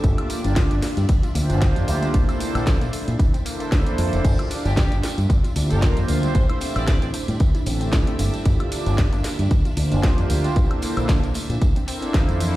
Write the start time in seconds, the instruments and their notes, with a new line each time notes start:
Already playing: string machine D4 E5
0.03 fingered electric bass G1, synth arpeggio sound F3, analog synth pad A#3 D4 F4 G4 D5, kick, closed hi-hat, tambourine
0.18 synth arpeggio sound F4, closed hi-hat, high woodblock
0.30 synth arpeggio sound A#3, open hi-hat, tambourine
0.44 fingered electric bass G1, analog synth pad A#3 D4 F4 G4 D5, synth arpeggio sound D4, closed hi-hat, tambourine
0.56 synth arpeggio sound F4, kick, snare, closed hi-hat, tambourine
0.71 fingered electric bass G1, synth arpeggio sound D4, closed hi-hat, tambourine
0.82 synth arpeggio sound A#3, snare, open hi-hat, tambourine
0.97 fingered electric bass G2, synth arpeggio sound G3, closed hi-hat, tambourine
1.09 synth arpeggio sound F3, kick, closed hi-hat, tambourine
1.23 synth arpeggio sound F4, closed hi-hat, tambourine
1.34 fingered electric bass D2, analog synth pad A#3 D4 F4 G4 C5, synth arpeggio sound A#3, open hi-hat, tambourine
1.50 fingered electric bass G1, synth arpeggio sound D4, closed hi-hat, tambourine
1.61 synth arpeggio sound F4, kick, snare, closed hi-hat, tambourine
1.76 fingered electric bass F2, synth arpeggio sound D4, closed hi-hat, tambourine
1.88 fingered electric bass D2, synth arpeggio sound A#3, open hi-hat, tambourine
2.02 synth arpeggio sound G3, closed hi-hat, tambourine
2.14 fingered electric bass A#1, synth arpeggio sound E3, analog synth pad A#3 D4 E4 A4 C5, kick, closed hi-hat, tambourine
2.28 synth arpeggio sound C4, closed hi-hat, tambourine, high woodblock
2.40 synth arpeggio sound A3, open hi-hat, tambourine
2.55 fingered electric bass A#1, analog synth pad A#3 D4 E4 A4 C5, synth arpeggio sound A#3, closed hi-hat, tambourine, high woodblock
2.67 synth arpeggio sound C4, kick, snare, closed hi-hat, tambourine
2.81 fingered electric bass A#1, synth arpeggio sound A#3, closed hi-hat, tambourine
2.93 synth arpeggio sound A3, open hi-hat, tambourine
3.07 fingered electric bass A#2, synth arpeggio sound F3, closed hi-hat, tambourine
3.19 fingered electric bass F1, synth arpeggio sound E3, kick, closed hi-hat, tambourine
3.34 synth arpeggio sound C4, closed hi-hat, tambourine
3.45 analog synth pad A#3 D4 E4 A4 C5, synth arpeggio sound A#3, open hi-hat, tambourine
3.60 synth arpeggio sound A#3, closed hi-hat, tambourine
3.72 synth arpeggio sound F3, kick, snare, closed hi-hat, tambourine
3.86 synth arpeggio sound E3, closed hi-hat, tambourine
3.98 fingered electric bass F2, synth arpeggio sound F3, open hi-hat, tambourine
4.13 fingered electric bass F1, synth arpeggio sound E4, closed hi-hat, tambourine
4.24 fingered electric bass G1, synth arpeggio sound F3, analog synth pad A#3 D4 F4 G4 D5, string machine D4 E5, kick, closed hi-hat, crash, tambourine
4.39 synth arpeggio sound F4, closed hi-hat, high woodblock
4.51 synth arpeggio sound D4, open hi-hat, tambourine
4.65 fingered electric bass G1, analog synth pad A#3 D4 F4 G4 D5, synth arpeggio sound D4, violin section G4, closed hi-hat, tambourine
4.77 synth arpeggio sound F4, violin section G4, kick, snare, closed hi-hat, tambourine
4.91 fingered electric bass G1, synth arpeggio sound D4, closed hi-hat, tambourine
5.03 synth arpeggio sound A#3, snare, open hi-hat, tambourine
5.18 fingered electric bass G2, synth arpeggio sound G3, closed hi-hat, tambourine
5.29 synth arpeggio sound F3, kick, closed hi-hat, tambourine
5.44 synth arpeggio sound F4, closed hi-hat, tambourine
5.55 fingered electric bass D2, analog synth pad A#3 D4 F4 G4 C5, synth arpeggio sound D4, open hi-hat, tambourine
5.70 fingered electric bass G1, synth arpeggio sound D4, violin section A#4, closed hi-hat, tambourine
5.82 synth arpeggio sound F4, kick, snare, closed hi-hat, tambourine
5.96 fingered electric bass F2, synth arpeggio sound D4, closed hi-hat, tambourine
6.08 fingered electric bass D2, synth arpeggio sound A#3, open hi-hat, tambourine
6.23 synth arpeggio sound G3, closed hi-hat, tambourine
6.34 fingered electric bass A1, synth arpeggio sound E3, analog synth pad A3 C4 E4 G4 C5, violin section C5, kick, closed hi-hat, tambourine
6.49 synth arpeggio sound E4, violin section C5, closed hi-hat, high woodblock
6.61 synth arpeggio sound C4, open hi-hat, tambourine
6.75 fingered electric bass A1, analog synth pad A3 C4 E4 G4 C5, synth arpeggio sound C4, violin section D5, closed hi-hat, tambourine, high woodblock
6.87 synth arpeggio sound E4, violin section D5, kick, snare, closed hi-hat, tambourine
7.02 fingered electric bass A1, synth arpeggio sound C4, closed hi-hat, tambourine
7.14 synth arpeggio sound A3, open hi-hat, tambourine
7.28 fingered electric bass A2, synth arpeggio sound G3, closed hi-hat, tambourine
7.40 synth arpeggio sound E3, kick, closed hi-hat, tambourine
7.55 synth arpeggio sound E4, closed hi-hat, tambourine
7.66 fingered electric bass A1, analog synth pad A3 C4 E4 G4 A4, synth arpeggio sound C4, open hi-hat, tambourine
7.81 synth arpeggio sound C4, closed hi-hat, tambourine
7.92 synth arpeggio sound E4, kick, snare, closed hi-hat, tambourine
8.07 synth arpeggio sound C4, closed hi-hat, tambourine
8.19 fingered electric bass G1, synth arpeggio sound A#3, open hi-hat, tambourine
8.34 synth arpeggio sound G3, closed hi-hat, tambourine
8.45 fingered electric bass G1, synth arpeggio sound F3, analog synth pad A#3 D4 F4 G4 D5, kick, closed hi-hat, tambourine
8.60 synth arpeggio sound F4, closed hi-hat, high woodblock
8.72 synth arpeggio sound D4, open hi-hat, tambourine
8.86 fingered electric bass G1, analog synth pad A#3 D4 F4 G4 D5, synth arpeggio sound D4, closed hi-hat, tambourine
8.98 synth arpeggio sound F4, kick, snare, closed hi-hat, tambourine
9.13 fingered electric bass G1, synth arpeggio sound D4, closed hi-hat, tambourine
9.24 synth arpeggio sound A#3, snare, open hi-hat, tambourine
9.39 fingered electric bass G2, synth arpeggio sound G3, closed hi-hat, tambourine
9.51 synth arpeggio sound F3, kick, closed hi-hat, tambourine
9.65 synth arpeggio sound F4, closed hi-hat, tambourine
9.76 fingered electric bass D2, analog synth pad A#3 D4 F4 G4 C5, synth arpeggio sound D4, open hi-hat, tambourine
9.92 fingered electric bass G1, synth arpeggio sound D4, closed hi-hat, tambourine
10.03 synth arpeggio sound F4, kick, snare, closed hi-hat, tambourine
10.18 fingered electric bass F2, synth arpeggio sound D4, closed hi-hat, tambourine
10.29 fingered electric bass D2, synth arpeggio sound A#3, open hi-hat, tambourine
10.44 synth arpeggio sound G3, closed hi-hat, tambourine
10.55 fingered electric bass A#1, synth arpeggio sound E3, analog synth pad A#3 D4 E4 A4 C5, kick, closed hi-hat, tambourine
10.71 synth arpeggio sound C4, closed hi-hat, high woodblock
10.82 synth arpeggio sound A#3, open hi-hat, tambourine
10.97 fingered electric bass A#1, analog synth pad A#3 D4 E4 A4 C5, synth arpeggio sound A#3, closed hi-hat, tambourine, high woodblock
11.09 synth arpeggio sound C4, kick, snare, closed hi-hat, tambourine
11.23 fingered electric bass A#1, synth arpeggio sound A#3, closed hi-hat, tambourine
11.34 synth arpeggio sound A3, open hi-hat, tambourine
11.49 fingered electric bass A#2, synth arpeggio sound F3, closed hi-hat, tambourine
11.61 synth arpeggio sound E3, kick, closed hi-hat, tambourine
11.76 synth arpeggio sound C4, closed hi-hat, tambourine
11.87 analog synth pad A#3 D4 E4 A4 C5, synth arpeggio sound C4, open hi-hat, tambourine
12.02 synth arpeggio sound C4, closed hi-hat, tambourine
12.14 synth arpeggio sound E3, kick, snare, closed hi-hat, tambourine
12.28 fingered electric bass F2, synth arpeggio sound A#3, closed hi-hat, tambourine
12.40 synth arpeggio sound E3, open hi-hat, tambourine